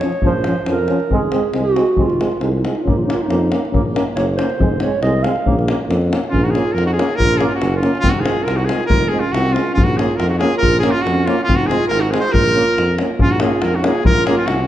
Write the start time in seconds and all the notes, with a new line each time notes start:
Already playing: C#5
0.00 F3 C#4, davul high
0.12 davul high
0.22 A#1 F3 C#4, davul low
0.27 C5
0.44 F3 C#4, davul high
0.66 F2 F3 C#4, davul high
0.72 A#4
0.88 F3 C#4, davul high
1.00 davul high
1.10 F1 G#3 C4, davul low
1.16 G#4
1.32 G#3 C4, davul high
1.53 C2 G#3 C4, davul high
1.63 F#4
1.75 G#3 C4, davul high
1.87 davul high
1.97 F1 G#3 C4, davul low
2.03 F4
2.10 davul high
2.19 G#3 C4, davul high
2.32 davul high
2.40 C2 G#3 C4 D#4, davul high
2.51 F4
2.62 G#3 C4 D#4, davul high
2.69 F4
2.74 D#4, davul high
2.82 A#1 C#4 F4
2.86 A#3, davul low
2.91 D#4
2.97 F4
3.04 A#3 C#4 D#4
3.10 F4, davul high
3.22 D#4
3.27 F2 A#3 C#4, davul high
3.50 A#3 C#4, davul high
3.65 davul high
3.71 A#1 A#3 C#4, davul low
3.94 A#3 C#4, davul high
4.15 F#1 A#3 C#4 C#5, davul high
4.36 A#3 C#4 C5, davul high
4.50 davul high
4.59 F1 G#3 C4, davul low
4.80 G#3 C4 C#5, davul high
5.02 C2 G#3 C4 D#5, davul high
5.23 G#3 C4 F5, davul high
5.36 davul high
5.46 A#1 A#3 C#4, davul low
5.59 davul high
5.67 A#3 C#4, davul high
5.81 davul high
5.88 F2 A#3 C#4, davul high
6.02 davul high
6.11 A#3 C#4, davul high
6.24 davul high
6.30 A#1 C#4 F4, davul low
6.42 D#4 F#4, davul high
6.51 C#4 G#4
6.55 A#3 F4, davul high
6.68 davul high
6.73 F2 F4 A#4
6.78 davul high
6.86 D#4 F#4
6.93 F4 G#4
6.97 A#3 C#4, davul high
7.10 davul high
7.16 A#1 F4 A#4
7.20 davul low
7.31 davul high
7.38 A#3 C#4 F4 G#4, davul high
7.46 F4
7.51 C#4 F#4, davul high
7.60 F#1 C#4, davul high
7.72 F4, davul high
7.82 A#3 C#4, davul high
7.95 davul high
8.00 F1 C4 F4
8.04 davul low
8.10 F#4
8.14 D#4, davul high
8.20 C4 F4 G#4
8.26 G#3, davul high
8.37 davul high
8.44 C2 F4 A#4
8.48 davul high
8.57 D#4 F#4, davul high
8.65 C4 F4 G#4
8.69 G#3, davul high
8.80 davul high
8.86 F1 F4 A#4, davul low
9.01 davul high
9.08 C4 F4 G#4
9.13 G#3
9.20 C#4 F4
9.32 C2 C4 F#4, davul high
9.45 davul high
9.52 G#3 C4 C#4 F4, davul high
9.67 davul high
9.73 A#1 C#4 F4
9.78 davul low
9.84 D#4 F#4
9.90 davul high
9.96 A#3 C#4 F4 G#4, davul high
10.11 davul high
10.16 F2 F4 A#4, davul high
10.27 D#4 F#4
10.31 davul high
10.39 A#3 C#4 F4 G#4, davul high
10.53 davul high
10.58 F4 A#4
10.62 A#1, davul low
10.74 davul high
10.79 C#4 G#4
10.83 A#3 F4, davul high
10.91 C#4 F4, davul high
11.02 C#4 F#4
11.06 F2, davul high
11.19 davul high
11.26 A#3 C#4 F4, davul high
11.39 davul high
11.44 C4 F4
11.48 F1, davul low
11.56 D#4 F#4
11.60 davul high
11.67 G#3 C4 F4 G#4
11.71 davul high
11.81 davul high
11.88 G#1 F4 A#4, davul high
12.00 D#4 F#4, davul high
12.10 G#3 C4 F4 G#4, davul high
12.20 G#4 C5
12.24 davul high
12.32 A#1 F4 A#4, davul low
12.46 davul high
12.54 A#3 C#4
12.68 davul high
12.77 F2, davul high
12.98 A#3 C#4, davul high
13.19 A#1 C#4 F4, davul low
13.29 D#4 F#4, davul high
13.40 A#3 C#4 F4 G#4, davul high
13.51 davul high
13.62 F2 F4 A#4, davul high
13.73 D#4 F#4, davul high
13.82 A#3 C#4 F4 G#4, davul high
13.95 davul high
14.05 A#1 F4 A#4, davul low
14.15 davul high
14.26 A#3 C#4 F4 G#4, davul high
14.37 C#4 F4, davul high
14.46 C2 C#4 F#4, davul high
14.58 davul high